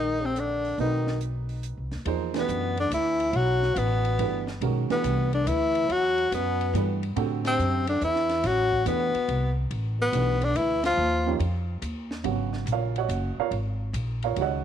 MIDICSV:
0, 0, Header, 1, 7, 480
1, 0, Start_track
1, 0, Key_signature, 1, "minor"
1, 0, Tempo, 424628
1, 879, Time_signature, 3, 2, 24, 8
1, 16552, End_track
2, 0, Start_track
2, 0, Title_t, "Upright piano"
2, 0, Program_c, 0, 0
2, 0, Note_on_c, 0, 51, 52
2, 0, Note_on_c, 0, 56, 54
2, 0, Note_on_c, 0, 67, 52
2, 0, Note_on_c, 0, 70, 68
2, 0, Note_on_c, 0, 74, 51
2, 787, Note_off_c, 0, 56, 0
2, 788, Note_off_c, 0, 51, 0
2, 791, Note_off_c, 0, 74, 0
2, 794, Note_off_c, 0, 67, 0
2, 794, Note_off_c, 0, 70, 0
2, 886, Note_on_c, 0, 57, 58
2, 893, Note_on_c, 0, 60, 51
2, 896, Note_on_c, 0, 63, 49
2, 897, Note_on_c, 0, 66, 47
2, 903, Note_on_c, 0, 71, 67
2, 2236, Note_off_c, 0, 57, 0
2, 2240, Note_off_c, 0, 60, 0
2, 2242, Note_off_c, 0, 63, 0
2, 2242, Note_off_c, 0, 66, 0
2, 2245, Note_off_c, 0, 71, 0
2, 2331, Note_on_c, 0, 53, 60
2, 2334, Note_on_c, 0, 58, 58
2, 2337, Note_on_c, 0, 68, 58
2, 2339, Note_on_c, 0, 63, 59
2, 2347, Note_on_c, 0, 72, 77
2, 2621, Note_off_c, 0, 53, 0
2, 2622, Note_off_c, 0, 58, 0
2, 2624, Note_off_c, 0, 68, 0
2, 2625, Note_off_c, 0, 63, 0
2, 2629, Note_off_c, 0, 72, 0
2, 2650, Note_on_c, 0, 52, 64
2, 2656, Note_on_c, 0, 57, 56
2, 2662, Note_on_c, 0, 62, 55
2, 2664, Note_on_c, 0, 67, 55
2, 2668, Note_on_c, 0, 71, 75
2, 3679, Note_off_c, 0, 52, 0
2, 3682, Note_off_c, 0, 57, 0
2, 3684, Note_off_c, 0, 62, 0
2, 3685, Note_off_c, 0, 67, 0
2, 3687, Note_off_c, 0, 71, 0
2, 4735, Note_on_c, 0, 52, 60
2, 4742, Note_on_c, 0, 57, 54
2, 4746, Note_on_c, 0, 67, 53
2, 4749, Note_on_c, 0, 62, 53
2, 4751, Note_on_c, 0, 71, 66
2, 5026, Note_off_c, 0, 52, 0
2, 5029, Note_off_c, 0, 57, 0
2, 5031, Note_off_c, 0, 67, 0
2, 5033, Note_off_c, 0, 62, 0
2, 5033, Note_off_c, 0, 71, 0
2, 5222, Note_on_c, 0, 51, 66
2, 5224, Note_on_c, 0, 56, 61
2, 5227, Note_on_c, 0, 61, 54
2, 5231, Note_on_c, 0, 70, 68
2, 5237, Note_on_c, 0, 66, 58
2, 5509, Note_off_c, 0, 51, 0
2, 5510, Note_off_c, 0, 56, 0
2, 5512, Note_off_c, 0, 61, 0
2, 5514, Note_off_c, 0, 70, 0
2, 5517, Note_off_c, 0, 66, 0
2, 5538, Note_on_c, 0, 52, 64
2, 5540, Note_on_c, 0, 57, 57
2, 5545, Note_on_c, 0, 62, 51
2, 5547, Note_on_c, 0, 67, 57
2, 5547, Note_on_c, 0, 71, 69
2, 6562, Note_off_c, 0, 52, 0
2, 6563, Note_off_c, 0, 57, 0
2, 6566, Note_off_c, 0, 62, 0
2, 6567, Note_off_c, 0, 67, 0
2, 6567, Note_off_c, 0, 71, 0
2, 7615, Note_on_c, 0, 52, 57
2, 7619, Note_on_c, 0, 57, 54
2, 7622, Note_on_c, 0, 62, 46
2, 7626, Note_on_c, 0, 67, 54
2, 7637, Note_on_c, 0, 71, 66
2, 7905, Note_off_c, 0, 52, 0
2, 7907, Note_off_c, 0, 57, 0
2, 7909, Note_off_c, 0, 62, 0
2, 7911, Note_off_c, 0, 67, 0
2, 7916, Note_off_c, 0, 71, 0
2, 8095, Note_on_c, 0, 67, 61
2, 8097, Note_on_c, 0, 50, 68
2, 8104, Note_on_c, 0, 60, 69
2, 8107, Note_on_c, 0, 66, 60
2, 8110, Note_on_c, 0, 69, 73
2, 9438, Note_off_c, 0, 67, 0
2, 9439, Note_off_c, 0, 50, 0
2, 9442, Note_off_c, 0, 60, 0
2, 9444, Note_off_c, 0, 66, 0
2, 9445, Note_off_c, 0, 69, 0
2, 10008, Note_on_c, 0, 52, 56
2, 10014, Note_on_c, 0, 62, 49
2, 10018, Note_on_c, 0, 57, 55
2, 10026, Note_on_c, 0, 67, 53
2, 10026, Note_on_c, 0, 71, 70
2, 10299, Note_off_c, 0, 52, 0
2, 10302, Note_off_c, 0, 62, 0
2, 10304, Note_off_c, 0, 57, 0
2, 10307, Note_off_c, 0, 67, 0
2, 10308, Note_off_c, 0, 71, 0
2, 11449, Note_on_c, 0, 52, 59
2, 11455, Note_on_c, 0, 57, 47
2, 11460, Note_on_c, 0, 62, 54
2, 11461, Note_on_c, 0, 67, 50
2, 11467, Note_on_c, 0, 71, 63
2, 11737, Note_off_c, 0, 52, 0
2, 11740, Note_off_c, 0, 57, 0
2, 11742, Note_off_c, 0, 62, 0
2, 11743, Note_off_c, 0, 67, 0
2, 11746, Note_off_c, 0, 71, 0
2, 12731, Note_on_c, 0, 53, 72
2, 12732, Note_on_c, 0, 58, 63
2, 12737, Note_on_c, 0, 61, 69
2, 12743, Note_on_c, 0, 63, 59
2, 12748, Note_on_c, 0, 67, 74
2, 12870, Note_off_c, 0, 53, 0
2, 12871, Note_off_c, 0, 58, 0
2, 12874, Note_off_c, 0, 61, 0
2, 12877, Note_off_c, 0, 63, 0
2, 12879, Note_off_c, 0, 67, 0
2, 13835, Note_on_c, 0, 49, 62
2, 13840, Note_on_c, 0, 54, 54
2, 13848, Note_on_c, 0, 59, 57
2, 13851, Note_on_c, 0, 66, 71
2, 14382, Note_on_c, 0, 73, 54
2, 14382, Note_on_c, 0, 77, 76
2, 14384, Note_on_c, 0, 65, 61
2, 14389, Note_on_c, 0, 70, 59
2, 14657, Note_off_c, 0, 73, 0
2, 14659, Note_off_c, 0, 66, 0
2, 14663, Note_off_c, 0, 77, 0
2, 14664, Note_off_c, 0, 65, 0
2, 14666, Note_off_c, 0, 70, 0
2, 14671, Note_on_c, 0, 78, 86
2, 14674, Note_on_c, 0, 73, 72
2, 14675, Note_on_c, 0, 75, 60
2, 14676, Note_on_c, 0, 66, 63
2, 15102, Note_off_c, 0, 78, 0
2, 15103, Note_off_c, 0, 73, 0
2, 15104, Note_off_c, 0, 75, 0
2, 15105, Note_off_c, 0, 66, 0
2, 15143, Note_on_c, 0, 77, 88
2, 15144, Note_on_c, 0, 73, 71
2, 15151, Note_on_c, 0, 65, 66
2, 15152, Note_on_c, 0, 70, 70
2, 15179, Note_off_c, 0, 49, 0
2, 15182, Note_off_c, 0, 54, 0
2, 15186, Note_off_c, 0, 59, 0
2, 15285, Note_off_c, 0, 77, 0
2, 15286, Note_off_c, 0, 73, 0
2, 15289, Note_off_c, 0, 65, 0
2, 15289, Note_off_c, 0, 70, 0
2, 16098, Note_on_c, 0, 77, 70
2, 16106, Note_on_c, 0, 70, 61
2, 16108, Note_on_c, 0, 65, 62
2, 16108, Note_on_c, 0, 73, 65
2, 16241, Note_off_c, 0, 77, 0
2, 16241, Note_on_c, 0, 51, 54
2, 16245, Note_off_c, 0, 70, 0
2, 16246, Note_off_c, 0, 65, 0
2, 16246, Note_off_c, 0, 73, 0
2, 16247, Note_on_c, 0, 56, 48
2, 16247, Note_on_c, 0, 61, 54
2, 16254, Note_on_c, 0, 66, 54
2, 16278, Note_off_c, 0, 66, 0
2, 16290, Note_on_c, 0, 78, 83
2, 16295, Note_on_c, 0, 66, 62
2, 16296, Note_on_c, 0, 73, 68
2, 16297, Note_on_c, 0, 75, 69
2, 16526, Note_off_c, 0, 51, 0
2, 16529, Note_off_c, 0, 56, 0
2, 16529, Note_off_c, 0, 61, 0
2, 16552, Note_off_c, 0, 66, 0
2, 16552, Note_off_c, 0, 73, 0
2, 16552, Note_off_c, 0, 75, 0
2, 16552, Note_off_c, 0, 78, 0
2, 16552, End_track
3, 0, Start_track
3, 0, Title_t, "Tenor saxophone"
3, 0, Program_c, 1, 66
3, 0, Note_on_c, 1, 63, 102
3, 284, Note_on_c, 1, 60, 78
3, 301, Note_off_c, 1, 63, 0
3, 445, Note_on_c, 1, 62, 74
3, 462, Note_off_c, 1, 60, 0
3, 901, Note_off_c, 1, 62, 0
3, 908, Note_on_c, 1, 63, 77
3, 1344, Note_off_c, 1, 63, 0
3, 2702, Note_on_c, 1, 59, 76
3, 3127, Note_off_c, 1, 59, 0
3, 3165, Note_on_c, 1, 62, 80
3, 3299, Note_off_c, 1, 62, 0
3, 3322, Note_on_c, 1, 64, 90
3, 3799, Note_on_c, 1, 66, 103
3, 3816, Note_off_c, 1, 64, 0
3, 4274, Note_on_c, 1, 59, 82
3, 4291, Note_off_c, 1, 66, 0
3, 5068, Note_off_c, 1, 59, 0
3, 5558, Note_on_c, 1, 59, 82
3, 5996, Note_off_c, 1, 59, 0
3, 6042, Note_on_c, 1, 62, 78
3, 6196, Note_on_c, 1, 64, 91
3, 6212, Note_off_c, 1, 62, 0
3, 6691, Note_on_c, 1, 66, 104
3, 6708, Note_off_c, 1, 64, 0
3, 7154, Note_off_c, 1, 66, 0
3, 7174, Note_on_c, 1, 59, 80
3, 7911, Note_off_c, 1, 59, 0
3, 8446, Note_on_c, 1, 60, 88
3, 8878, Note_off_c, 1, 60, 0
3, 8919, Note_on_c, 1, 62, 83
3, 9056, Note_off_c, 1, 62, 0
3, 9090, Note_on_c, 1, 64, 95
3, 9569, Note_on_c, 1, 66, 98
3, 9585, Note_off_c, 1, 64, 0
3, 10030, Note_off_c, 1, 66, 0
3, 10038, Note_on_c, 1, 59, 85
3, 10779, Note_off_c, 1, 59, 0
3, 11319, Note_on_c, 1, 59, 84
3, 11803, Note_on_c, 1, 62, 90
3, 11820, Note_off_c, 1, 59, 0
3, 11947, Note_on_c, 1, 64, 88
3, 11964, Note_off_c, 1, 62, 0
3, 12257, Note_off_c, 1, 64, 0
3, 12274, Note_on_c, 1, 65, 93
3, 12854, Note_off_c, 1, 65, 0
3, 16552, End_track
4, 0, Start_track
4, 0, Title_t, "Trombone"
4, 0, Program_c, 2, 57
4, 0, Note_on_c, 2, 51, 86
4, 251, Note_on_c, 2, 48, 70
4, 268, Note_off_c, 2, 51, 0
4, 410, Note_on_c, 2, 50, 64
4, 427, Note_off_c, 2, 48, 0
4, 887, Note_off_c, 2, 50, 0
4, 896, Note_on_c, 2, 51, 76
4, 1338, Note_off_c, 2, 51, 0
4, 2678, Note_on_c, 2, 47, 70
4, 3114, Note_off_c, 2, 47, 0
4, 3153, Note_on_c, 2, 50, 71
4, 3293, Note_off_c, 2, 50, 0
4, 3304, Note_on_c, 2, 52, 78
4, 3770, Note_on_c, 2, 54, 96
4, 3787, Note_off_c, 2, 52, 0
4, 4244, Note_on_c, 2, 47, 77
4, 4261, Note_off_c, 2, 54, 0
4, 5053, Note_off_c, 2, 47, 0
4, 5545, Note_on_c, 2, 47, 72
4, 5989, Note_off_c, 2, 47, 0
4, 6012, Note_on_c, 2, 50, 73
4, 6178, Note_on_c, 2, 52, 71
4, 6195, Note_off_c, 2, 50, 0
4, 6661, Note_on_c, 2, 54, 85
4, 6678, Note_off_c, 2, 52, 0
4, 7135, Note_off_c, 2, 54, 0
4, 7141, Note_on_c, 2, 47, 81
4, 7895, Note_off_c, 2, 47, 0
4, 8427, Note_on_c, 2, 48, 76
4, 8868, Note_off_c, 2, 48, 0
4, 8906, Note_on_c, 2, 50, 67
4, 9049, Note_off_c, 2, 50, 0
4, 9068, Note_on_c, 2, 52, 79
4, 9558, Note_on_c, 2, 54, 103
4, 9575, Note_off_c, 2, 52, 0
4, 10005, Note_off_c, 2, 54, 0
4, 10012, Note_on_c, 2, 47, 70
4, 10766, Note_off_c, 2, 47, 0
4, 11300, Note_on_c, 2, 47, 65
4, 11782, Note_on_c, 2, 50, 77
4, 11799, Note_off_c, 2, 47, 0
4, 11937, Note_on_c, 2, 52, 67
4, 11954, Note_off_c, 2, 50, 0
4, 12252, Note_off_c, 2, 52, 0
4, 12262, Note_on_c, 2, 53, 92
4, 12847, Note_off_c, 2, 53, 0
4, 16552, End_track
5, 0, Start_track
5, 0, Title_t, "Upright bass"
5, 0, Program_c, 3, 32
5, 0, Note_on_c, 3, 34, 75
5, 838, Note_off_c, 3, 34, 0
5, 881, Note_on_c, 3, 35, 72
5, 1963, Note_off_c, 3, 35, 0
5, 2005, Note_on_c, 3, 36, 49
5, 2156, Note_off_c, 3, 36, 0
5, 2163, Note_on_c, 3, 39, 59
5, 2315, Note_off_c, 3, 39, 0
5, 2322, Note_on_c, 3, 40, 80
5, 2793, Note_off_c, 3, 40, 0
5, 2802, Note_on_c, 3, 42, 91
5, 3274, Note_off_c, 3, 42, 0
5, 3283, Note_on_c, 3, 38, 80
5, 3755, Note_off_c, 3, 38, 0
5, 3764, Note_on_c, 3, 35, 86
5, 4236, Note_off_c, 3, 35, 0
5, 4247, Note_on_c, 3, 33, 89
5, 4718, Note_off_c, 3, 33, 0
5, 4740, Note_on_c, 3, 31, 81
5, 5205, Note_off_c, 3, 31, 0
5, 5213, Note_on_c, 3, 35, 86
5, 5514, Note_off_c, 3, 35, 0
5, 5694, Note_on_c, 3, 36, 83
5, 6162, Note_off_c, 3, 36, 0
5, 6176, Note_on_c, 3, 38, 95
5, 6643, Note_off_c, 3, 38, 0
5, 6654, Note_on_c, 3, 40, 78
5, 7121, Note_off_c, 3, 40, 0
5, 7136, Note_on_c, 3, 42, 88
5, 7602, Note_off_c, 3, 42, 0
5, 7613, Note_on_c, 3, 43, 95
5, 8080, Note_off_c, 3, 43, 0
5, 8095, Note_on_c, 3, 45, 82
5, 8561, Note_off_c, 3, 45, 0
5, 8578, Note_on_c, 3, 42, 85
5, 9041, Note_off_c, 3, 42, 0
5, 9056, Note_on_c, 3, 40, 91
5, 9520, Note_off_c, 3, 40, 0
5, 9533, Note_on_c, 3, 33, 86
5, 9998, Note_off_c, 3, 33, 0
5, 10014, Note_on_c, 3, 40, 87
5, 10311, Note_off_c, 3, 40, 0
5, 10495, Note_on_c, 3, 36, 84
5, 10957, Note_off_c, 3, 36, 0
5, 10971, Note_on_c, 3, 33, 83
5, 11435, Note_off_c, 3, 33, 0
5, 11445, Note_on_c, 3, 35, 91
5, 11911, Note_off_c, 3, 35, 0
5, 11927, Note_on_c, 3, 38, 84
5, 12391, Note_off_c, 3, 38, 0
5, 12406, Note_on_c, 3, 39, 92
5, 12870, Note_off_c, 3, 39, 0
5, 12881, Note_on_c, 3, 41, 91
5, 13347, Note_off_c, 3, 41, 0
5, 13359, Note_on_c, 3, 39, 84
5, 13825, Note_off_c, 3, 39, 0
5, 13837, Note_on_c, 3, 32, 82
5, 14300, Note_off_c, 3, 32, 0
5, 14307, Note_on_c, 3, 34, 85
5, 14778, Note_off_c, 3, 34, 0
5, 14792, Note_on_c, 3, 30, 87
5, 15093, Note_off_c, 3, 30, 0
5, 15271, Note_on_c, 3, 32, 80
5, 15738, Note_off_c, 3, 32, 0
5, 15751, Note_on_c, 3, 34, 86
5, 16217, Note_off_c, 3, 34, 0
5, 16236, Note_on_c, 3, 37, 86
5, 16552, Note_off_c, 3, 37, 0
5, 16552, End_track
6, 0, Start_track
6, 0, Title_t, "Muted upright bass strokes"
6, 5539, Note_on_c, 9, 29, 37
6, 5652, Note_off_c, 9, 29, 0
6, 10338, Note_on_c, 9, 29, 44
6, 10451, Note_off_c, 9, 29, 0
6, 15118, Note_on_c, 9, 29, 39
6, 15231, Note_off_c, 9, 29, 0
6, 16552, End_track
7, 0, Start_track
7, 0, Title_t, "Drums"
7, 408, Note_on_c, 9, 42, 44
7, 521, Note_off_c, 9, 42, 0
7, 732, Note_on_c, 9, 46, 32
7, 845, Note_off_c, 9, 46, 0
7, 885, Note_on_c, 9, 46, 37
7, 998, Note_off_c, 9, 46, 0
7, 1211, Note_on_c, 9, 38, 48
7, 1324, Note_off_c, 9, 38, 0
7, 1365, Note_on_c, 9, 42, 50
7, 1478, Note_off_c, 9, 42, 0
7, 1684, Note_on_c, 9, 46, 34
7, 1797, Note_off_c, 9, 46, 0
7, 1845, Note_on_c, 9, 42, 49
7, 1958, Note_off_c, 9, 42, 0
7, 2165, Note_on_c, 9, 46, 32
7, 2166, Note_on_c, 9, 38, 33
7, 2278, Note_off_c, 9, 46, 0
7, 2279, Note_off_c, 9, 38, 0
7, 2323, Note_on_c, 9, 51, 63
7, 2436, Note_off_c, 9, 51, 0
7, 2647, Note_on_c, 9, 51, 58
7, 2648, Note_on_c, 9, 38, 77
7, 2760, Note_off_c, 9, 51, 0
7, 2761, Note_off_c, 9, 38, 0
7, 2810, Note_on_c, 9, 44, 66
7, 2923, Note_off_c, 9, 44, 0
7, 3136, Note_on_c, 9, 51, 46
7, 3249, Note_off_c, 9, 51, 0
7, 3295, Note_on_c, 9, 44, 54
7, 3295, Note_on_c, 9, 51, 65
7, 3408, Note_off_c, 9, 44, 0
7, 3408, Note_off_c, 9, 51, 0
7, 3616, Note_on_c, 9, 51, 46
7, 3729, Note_off_c, 9, 51, 0
7, 3768, Note_on_c, 9, 51, 53
7, 3881, Note_off_c, 9, 51, 0
7, 4098, Note_on_c, 9, 38, 36
7, 4211, Note_off_c, 9, 38, 0
7, 4255, Note_on_c, 9, 44, 56
7, 4255, Note_on_c, 9, 51, 72
7, 4368, Note_off_c, 9, 44, 0
7, 4368, Note_off_c, 9, 51, 0
7, 4576, Note_on_c, 9, 51, 49
7, 4689, Note_off_c, 9, 51, 0
7, 4737, Note_on_c, 9, 51, 65
7, 4850, Note_off_c, 9, 51, 0
7, 5057, Note_on_c, 9, 38, 49
7, 5170, Note_off_c, 9, 38, 0
7, 5217, Note_on_c, 9, 51, 61
7, 5330, Note_off_c, 9, 51, 0
7, 5542, Note_on_c, 9, 51, 41
7, 5543, Note_on_c, 9, 38, 41
7, 5655, Note_off_c, 9, 51, 0
7, 5656, Note_off_c, 9, 38, 0
7, 5699, Note_on_c, 9, 44, 47
7, 5699, Note_on_c, 9, 51, 65
7, 5812, Note_off_c, 9, 44, 0
7, 5812, Note_off_c, 9, 51, 0
7, 6023, Note_on_c, 9, 51, 49
7, 6136, Note_off_c, 9, 51, 0
7, 6182, Note_on_c, 9, 44, 70
7, 6182, Note_on_c, 9, 51, 72
7, 6295, Note_off_c, 9, 44, 0
7, 6295, Note_off_c, 9, 51, 0
7, 6502, Note_on_c, 9, 51, 46
7, 6615, Note_off_c, 9, 51, 0
7, 6665, Note_on_c, 9, 51, 58
7, 6778, Note_off_c, 9, 51, 0
7, 6984, Note_on_c, 9, 51, 42
7, 7097, Note_off_c, 9, 51, 0
7, 7147, Note_on_c, 9, 44, 64
7, 7147, Note_on_c, 9, 51, 71
7, 7260, Note_off_c, 9, 44, 0
7, 7260, Note_off_c, 9, 51, 0
7, 7470, Note_on_c, 9, 51, 45
7, 7583, Note_off_c, 9, 51, 0
7, 7627, Note_on_c, 9, 44, 66
7, 7627, Note_on_c, 9, 51, 65
7, 7741, Note_off_c, 9, 44, 0
7, 7741, Note_off_c, 9, 51, 0
7, 7946, Note_on_c, 9, 51, 43
7, 8059, Note_off_c, 9, 51, 0
7, 8099, Note_on_c, 9, 51, 62
7, 8212, Note_off_c, 9, 51, 0
7, 8418, Note_on_c, 9, 51, 65
7, 8420, Note_on_c, 9, 38, 77
7, 8531, Note_off_c, 9, 51, 0
7, 8533, Note_off_c, 9, 38, 0
7, 8584, Note_on_c, 9, 44, 55
7, 8697, Note_off_c, 9, 44, 0
7, 8899, Note_on_c, 9, 51, 64
7, 9012, Note_off_c, 9, 51, 0
7, 9058, Note_on_c, 9, 44, 58
7, 9171, Note_off_c, 9, 44, 0
7, 9216, Note_on_c, 9, 38, 31
7, 9329, Note_off_c, 9, 38, 0
7, 9376, Note_on_c, 9, 51, 45
7, 9377, Note_on_c, 9, 38, 43
7, 9489, Note_off_c, 9, 51, 0
7, 9490, Note_off_c, 9, 38, 0
7, 9536, Note_on_c, 9, 51, 63
7, 9537, Note_on_c, 9, 38, 36
7, 9649, Note_off_c, 9, 51, 0
7, 9650, Note_off_c, 9, 38, 0
7, 9858, Note_on_c, 9, 36, 56
7, 9971, Note_off_c, 9, 36, 0
7, 10015, Note_on_c, 9, 44, 63
7, 10015, Note_on_c, 9, 51, 66
7, 10128, Note_off_c, 9, 44, 0
7, 10128, Note_off_c, 9, 51, 0
7, 10339, Note_on_c, 9, 51, 48
7, 10452, Note_off_c, 9, 51, 0
7, 10497, Note_on_c, 9, 51, 61
7, 10611, Note_off_c, 9, 51, 0
7, 10974, Note_on_c, 9, 51, 59
7, 11087, Note_off_c, 9, 51, 0
7, 11452, Note_on_c, 9, 44, 60
7, 11452, Note_on_c, 9, 51, 72
7, 11565, Note_off_c, 9, 44, 0
7, 11565, Note_off_c, 9, 51, 0
7, 11774, Note_on_c, 9, 51, 48
7, 11887, Note_off_c, 9, 51, 0
7, 11933, Note_on_c, 9, 44, 51
7, 11933, Note_on_c, 9, 51, 61
7, 12046, Note_off_c, 9, 44, 0
7, 12046, Note_off_c, 9, 51, 0
7, 12250, Note_on_c, 9, 51, 68
7, 12251, Note_on_c, 9, 38, 84
7, 12363, Note_off_c, 9, 51, 0
7, 12364, Note_off_c, 9, 38, 0
7, 12890, Note_on_c, 9, 51, 68
7, 13003, Note_off_c, 9, 51, 0
7, 13363, Note_on_c, 9, 44, 55
7, 13363, Note_on_c, 9, 51, 72
7, 13476, Note_off_c, 9, 44, 0
7, 13476, Note_off_c, 9, 51, 0
7, 13688, Note_on_c, 9, 38, 50
7, 13801, Note_off_c, 9, 38, 0
7, 13839, Note_on_c, 9, 51, 63
7, 13952, Note_off_c, 9, 51, 0
7, 14163, Note_on_c, 9, 38, 41
7, 14276, Note_off_c, 9, 38, 0
7, 14320, Note_on_c, 9, 44, 67
7, 14320, Note_on_c, 9, 51, 64
7, 14433, Note_off_c, 9, 44, 0
7, 14433, Note_off_c, 9, 51, 0
7, 14647, Note_on_c, 9, 51, 43
7, 14760, Note_off_c, 9, 51, 0
7, 14802, Note_on_c, 9, 44, 53
7, 14802, Note_on_c, 9, 51, 68
7, 14915, Note_off_c, 9, 44, 0
7, 14915, Note_off_c, 9, 51, 0
7, 15277, Note_on_c, 9, 51, 50
7, 15390, Note_off_c, 9, 51, 0
7, 15759, Note_on_c, 9, 44, 67
7, 15759, Note_on_c, 9, 51, 71
7, 15872, Note_off_c, 9, 44, 0
7, 15872, Note_off_c, 9, 51, 0
7, 16081, Note_on_c, 9, 51, 44
7, 16194, Note_off_c, 9, 51, 0
7, 16237, Note_on_c, 9, 51, 60
7, 16350, Note_off_c, 9, 51, 0
7, 16552, End_track
0, 0, End_of_file